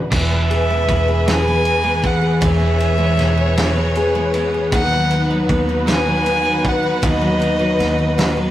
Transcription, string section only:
Already playing: F#4
0.10 E3 B3 G#4 B4
2.43 C#5
4.74 D#3 F#4 B4

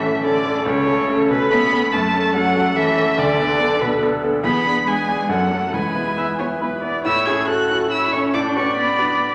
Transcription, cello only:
Already playing: E3
0.23 D3
0.65 C#3
1.30 B2
1.51 B3
1.92 A3
2.34 F#3
2.76 E3
3.18 D3
3.81 B2
4.44 B3
4.86 G#3
5.29 F#3
5.73 G#3
7.05 E4
7.27 G#4
7.48 F#4
7.92 E4
8.14 C#4
8.35 D4
8.56 C#4
8.78 B3

